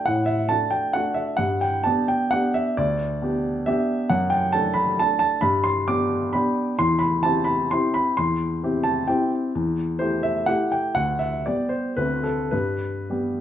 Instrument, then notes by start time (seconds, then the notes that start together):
grand piano
0.06 A2 F#5
0.26 E5
0.49 A3 D4 F#4 A5
0.71 G5
0.93 A3 D4 F#4 F#5
1.14 E5
1.37 G2 F#5
1.61 G5
1.84 B3 D4 G4 A5
2.08 G5
2.31 B3 D4 G4 F#5
2.54 E5
2.77 D2 D5
3.22 B3 D4 G4
3.66 B3 D4 G4 E5
4.10 F#2 F#5
4.30 G5
4.52 A3 D4 A4 A5
4.74 B5
4.99 A3 D4 A4 A5
5.19 A5
5.41 G2 B5
5.64 C6
5.88 B3 D4 G4 D6
6.33 B3 D4 G4 B5
6.79 E2 C6
6.99 B5
7.23 C4 E4 G4 A5
7.44 B5
7.71 C4 E4 G4 C6
7.94 B5
8.17 E2 C6
8.63 C4 E4 G4
8.84 A5
9.08 C4 E4 G4 G5
9.55 E2
9.99 A3 E4 G4 C5
10.23 E5
10.46 A3 E4 G4 F#5
10.72 G5
10.95 D2 F#5
11.19 E5
11.46 G3 B3 G4 D5
11.69 C5
11.97 D2 A3 C4 F#4 B4
12.23 A4
12.51 G2 B4
13.10 G3 B3 G4